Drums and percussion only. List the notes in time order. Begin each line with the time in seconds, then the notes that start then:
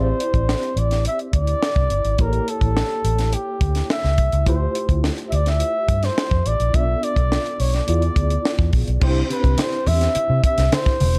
0.20 closed hi-hat
0.34 kick, closed hi-hat
0.49 snare
0.63 closed hi-hat
0.77 closed hi-hat
0.91 snare, closed hi-hat
1.05 closed hi-hat
1.19 closed hi-hat
1.33 kick, closed hi-hat
1.47 closed hi-hat
1.63 snare
1.76 kick
1.90 closed hi-hat
2.05 closed hi-hat
2.18 kick, closed hi-hat
2.33 closed hi-hat
2.48 closed hi-hat
2.61 kick, closed hi-hat
2.77 snare
3.05 closed hi-hat
3.19 snare, closed hi-hat
3.33 closed hi-hat
3.61 kick, closed hi-hat
3.75 snare, closed hi-hat
3.90 snare
4.05 snare
4.18 kick, closed hi-hat
4.32 closed hi-hat
4.46 kick, closed hi-hat
4.75 closed hi-hat
4.89 kick, closed hi-hat
5.04 snare
5.18 closed hi-hat
5.32 closed hi-hat
5.46 snare, closed hi-hat
5.60 closed hi-hat
5.89 kick, closed hi-hat
6.03 snare, closed hi-hat
6.18 snare
6.31 kick
6.46 closed hi-hat
6.60 closed hi-hat
6.74 kick, closed hi-hat
7.03 closed hi-hat
7.16 kick, closed hi-hat
7.32 snare
7.46 closed hi-hat
7.60 open hi-hat
7.74 snare, closed hi-hat
7.88 closed hi-hat
8.02 closed hi-hat
8.16 kick, closed hi-hat
8.30 closed hi-hat
8.45 snare
8.59 kick
8.73 kick, open hi-hat
8.88 closed hi-hat
9.01 kick, crash, muted conga
9.30 closed hi-hat, muted conga
9.44 kick, closed hi-hat
9.58 snare, closed hi-hat, high conga
9.86 open hi-hat, low conga
10.01 snare, closed hi-hat
10.15 closed hi-hat, muted conga
10.44 kick, closed hi-hat, muted conga
10.58 snare, closed hi-hat
10.72 snare, closed hi-hat, high conga
10.86 kick, snare, closed hi-hat
11.00 open hi-hat, high conga
11.15 closed hi-hat, high conga